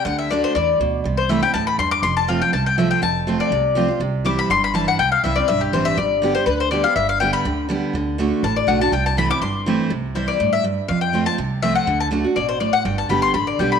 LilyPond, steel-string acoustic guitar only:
\new Staff \with { instrumentName = "Steel-string acoustic guitar" } { \time 4/4 \key c \major \tempo 4 = 244 << { r4 <d a d' fis'>4 r2 | r4 <e a c' e'>8 <c' e'>8 r2 | r4 <f a c' f'>8 <c' f'>8 r4 <f a c' f'>4 | r4 <f a c' f'>4 r4 <f a c' f'>8 <c' f'>8 |
r4 <e g c' e'>4 r4 <e g c' e'>4 | r4 <e g c' e'>8 <c' e'>8 r4 <e g c' e'>4 | r4 <d g b g'>8 g'8 r4 <d g b g'>8 <b g'>8 | r4 <d g b g'>4 r4 <d g b g'>4 |
r4 <d a d' fis'>4 r4 <d a d' fis'>8 <d' fis'>8 | r4 <e a c' e'>8 <c' e'>8 r4 <e a c' e'>4 | r4 <e g c' e'>4 r2 | r4 <f a c' f'>8 <c' f'>8 r4 <f a c' f'>4 |
r4 <d a d' fis'>8 <d' fis'>8 r2 | r4 <d g b g'>4 r4 <d g b g'>4 | } \\ { d2 e4 b,4 | c2 a,4 g,4 | f,2 c2 | f,2 c2 |
c2 g,2 | c2 g,2 | g,2 d2 | g,2 d2 |
d2 a,2 | c2 g,2 | c2 a,4 g,4 | f,2 c2 |
d2 b,4 a,4 | g,2 d2 | } >> }